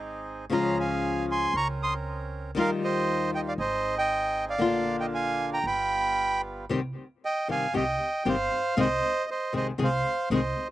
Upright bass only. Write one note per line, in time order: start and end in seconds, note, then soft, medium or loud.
0.00 0.45 G#1 medium
0.50 1.48 C#2 medium
1.54 2.51 C#2 medium
2.56 3.53 D#2 medium
3.58 4.55 G#1 medium
4.60 5.59 A#1 medium
5.64 6.65 G1 medium
6.71 6.92 C2 medium
7.49 7.70 G1 soft
7.74 7.96 C2 medium
8.26 8.47 G1 medium
8.77 8.99 C2 medium
9.54 9.75 C2 medium
9.79 10.01 C2 medium
10.30 10.52 C2 medium